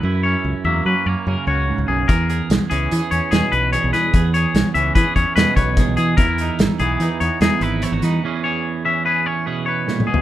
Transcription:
<<
  \new Staff \with { instrumentName = "Clean electric guitar" } { \time 5/4 \key e \lydian \tempo 4 = 147 b'8 cis''4 e''8 b'8 cis''8 ais'8 cis''4 gis'8 | ais'4 r8 gis'4 cis''8 gis'8 b'8 cis''8 b'8~ | b'8 cis''4 e''8 b'8 cis''8 b'8 cis''4 gis'8 | ais'4 r8 gis'4 cis''8 gis'8 b'8 cis''8 b'8~ |
b'8 cis''4 e''8 b'8 cis''8 b'8 cis''4 gis'8 | }
  \new Staff \with { instrumentName = "Clean electric guitar" } { \time 5/4 \key e \lydian << { e'8 cis'4 ais8 cis'8 ais8 cis'8 fis'4. | gis'8 gis'4 cis'8 gis'8 cis'8 gis'8 b'8 gis'8 gis'8 | gis'8 gis'4 cis'8 gis'8 cis'8 gis'8 b'8 gis'8 gis'8 | e'8 dis'4 b8 dis'8 b8 dis'8 e'8 e'16 fis'16 dis'8 |
<e cis' gis'>8 gis'4 cis'8 gis'8 cis'8 gis'8 b'4. | } \\ { <fis, e>4. fis4. cis4 gis,8 fis,8 | e,4. e4. b,4 e,4 | e,4. e4. b,4 e,4 | e,4. e4. e,4 e,4 |
e,4. e4. b,4 ais,8 b,8 | } >> }
  \new Staff \with { instrumentName = "Fingered electric bass" } { \clef bass \time 5/4 \key e \lydian fis,4 cis,16 r16 e,8 fis16 r16 fis,16 r16 fis,16 r16 cis,8. cis,16 b,,8 | e,4 b,,16 r16 cis,8 e16 r16 e,16 r16 e,16 r16 b,,8. b,,16 e8 | e,4 b,,16 r16 cis,8 e16 r16 e,16 r16 e,16 r16 b,,8. b,,16 e8 | e,4 gis,,16 r16 b,,8 e16 r16 e,16 r16 e,16 r16 gis,,8. gis,,16 e8 |
r1 r4 | }
  \new DrumStaff \with { instrumentName = "Drums" } \drummode { \time 5/4 r4 r4 r4 r4 r4 | <hh bd>8 hh8 <hh sn>8 hh8 hh8 hh8 <hh sn>8 hh8 hh8 <hh sn>8 | <hh bd>8 hh8 <hh sn>8 hh8 <hh bd>8 <hh bd>8 <hh sn>8 <hh bd>8 <hh bd sn>8 hh8 | <hh bd>8 hh8 <hh sn>8 hh8 hh8 hh8 <hh sn>8 hh8 hh8 <hh sn>8 |
r4 r4 r4 r4 \tuplet 3/2 { sn8 toml8 tomfh8 } | }
>>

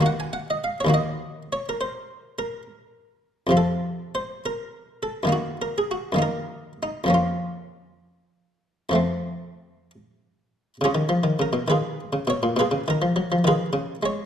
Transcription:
<<
  \new Staff \with { instrumentName = "Harpsichord" } { \time 12/8 \key des \major \tempo 4. = 68 ges''16 aes''16 ges''16 ees''16 f''16 des''16 ees''4 des''16 bes'16 c''4 bes'8 r4. | a'4 c''8 bes'4 a'8 ges'8 bes'16 aes'16 ges'8 bes'4 ees'8 | f'1~ f'8 r4. | <des' f' aes'>4 bes'8 <f' aes' ces''>4 des''8 <f' aes' ces''>8 bes'4 <f' aes' ces''>4 des''8 | }
  \new Staff \with { instrumentName = "Harpsichord" } { \clef bass \time 12/8 \key des \major <ees, ees bes ges'>4. <ees, ees bes ges'>1~ <ees, ees bes ges'>8 | <f, c f f'>2. <ges, ees bes ees'>4. <ges, ees bes ees'>4. | <f, f bes des'>2. <f, f a c'>2. | des16 ees16 f16 ees16 des16 ces16 ees8. des16 ces16 bes,16 ces16 des16 ees16 f16 ges16 f16 ees8 des8 aes8 | }
>>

